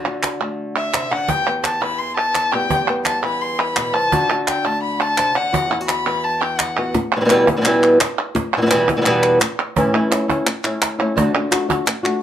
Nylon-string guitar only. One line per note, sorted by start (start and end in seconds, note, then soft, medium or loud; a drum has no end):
0.00 1.10 D3 medium
0.06 1.28 F#4 medium
0.40 1.27 A3 medium
0.93 1.11 C3 medium
1.11 1.29 D3 medium
1.28 2.69 E2 medium
1.28 2.53 G4 medium
1.48 2.53 B3 medium
1.81 2.68 E3 medium
2.54 4.13 G3 medium
2.54 2.88 B3 medium
2.54 2.70 G4 medium
2.70 4.12 E2 medium
2.70 4.10 G4 medium
2.89 4.13 B3 medium
3.24 4.10 E3 medium
3.77 3.94 B2 medium
3.95 4.13 C3 medium
4.12 5.35 D3 medium
4.12 4.31 F#4 medium
4.31 5.52 F#4 medium
4.66 5.52 A3 medium
5.18 5.36 C3 medium
5.36 5.54 D3 medium
5.53 6.94 E2 medium
5.53 5.70 F#4 medium
5.70 5.81 E4 medium
5.81 6.78 F#4 medium
6.06 6.93 E3 medium
6.78 6.93 B3 medium
6.78 6.94 F#4 medium
6.95 muted nylon-string guitar stroke medium
7.16 7.19 B2 medium
7.16 7.20 E3 medium
7.16 7.20 G3 medium
7.16 7.20 B3 medium
7.16 7.20 E4 medium
7.21 7.24 B2 medium
7.21 7.24 E3 medium
7.21 7.24 G3 medium
7.21 7.25 B3 medium
7.21 7.25 E4 medium
7.25 7.29 B2 medium
7.25 7.29 E3 medium
7.25 7.29 G3 medium
7.25 7.29 B3 medium
7.25 7.30 E4 medium
7.29 7.47 E2 loud
7.29 7.47 B2 loud
7.29 7.47 E3 loud
7.29 7.47 G3 loud
7.29 7.47 B3 loud
7.29 7.46 E4 medium
7.47 7.56 E3 soft
7.47 7.56 G3 medium
7.47 7.56 B3 medium
7.47 7.57 E4 medium
7.57 7.60 B2 medium
7.57 7.61 E3 medium
7.57 7.61 G3 medium
7.57 7.61 B3 medium
7.57 7.61 E4 medium
7.61 7.65 B2 medium
7.61 7.65 E3 medium
7.61 7.65 G3 medium
7.61 7.65 B3 medium
7.61 7.66 E4 medium
7.66 7.99 E2 medium
7.66 8.00 B2 medium
7.66 7.99 E3 loud
7.66 8.00 G3 loud
7.66 8.00 B3 loud
7.66 8.00 E4 loud
8.00 muted nylon-string guitar stroke medium
8.35 muted nylon-string guitar stroke medium
8.57 8.60 B2 medium
8.57 8.61 E3 medium
8.57 8.61 G3 medium
8.57 8.61 B3 medium
8.57 8.61 E4 medium
8.62 8.65 B2 medium
8.62 8.65 E3 medium
8.62 8.66 G3 medium
8.62 8.66 B3 medium
8.62 8.66 E4 medium
8.66 8.70 B2 medium
8.66 8.70 E3 medium
8.66 8.70 G3 medium
8.66 8.70 B3 medium
8.66 8.71 E4 medium
8.71 8.88 E2 medium
8.71 8.88 B2 medium
8.71 8.88 E3 loud
8.71 8.88 G3 loud
8.71 8.88 B3 loud
8.71 8.87 E4 loud
8.88 8.96 E3 soft
8.88 8.96 G3 soft
8.88 8.96 B3 medium
8.88 8.96 E4 medium
8.97 9.00 B2 medium
8.97 9.01 E3 medium
8.97 9.00 G3 medium
8.97 9.01 B3 medium
8.97 9.01 E4 medium
9.01 9.05 B2 medium
9.01 9.05 E3 medium
9.01 9.05 G3 medium
9.01 9.06 B3 medium
9.01 9.05 E4 medium
9.05 9.40 E2 medium
9.05 9.40 B2 medium
9.05 9.40 E3 medium
9.05 9.41 G3 loud
9.05 9.41 B3 loud
9.05 9.41 E4 medium
9.41 muted nylon-string guitar stroke medium
9.76 9.93 A2 medium
9.76 9.92 E3 medium
9.76 9.93 A3 medium
9.76 9.94 C#4 medium
9.76 9.95 E4 medium
9.94 10.11 E3 medium
9.94 10.11 A3 medium
9.94 10.11 C#4 medium
9.94 10.10 E4 medium
10.11 10.29 A3 medium
10.11 10.28 C#4 medium
10.11 10.27 E4 medium
10.28 10.46 A3 soft
10.28 10.46 C#4 medium
10.28 10.46 E4 medium
10.46 muted nylon-string guitar stroke medium
10.64 10.99 A3 medium
10.64 10.98 C#4 medium
10.64 10.97 E4 medium
10.99 11.15 A3 medium
10.99 11.17 C#4 medium
10.99 11.16 E4 medium
11.16 11.33 D3 medium
11.16 11.34 A3 medium
11.16 11.34 D4 loud
11.16 11.34 F#4 loud
11.34 11.51 D3 medium
11.34 11.52 A3 medium
11.34 11.51 D4 medium
11.34 11.50 F#4 medium
11.51 11.70 A3 medium
11.51 11.69 D4 medium
11.51 11.68 F#4 medium
11.69 11.86 A3 soft
11.69 11.86 D4 medium
11.69 11.86 F#4 medium
11.87 muted nylon-string guitar stroke medium
12.03 12.22 A3 medium
12.03 12.22 D4 medium
12.03 12.22 F#4 medium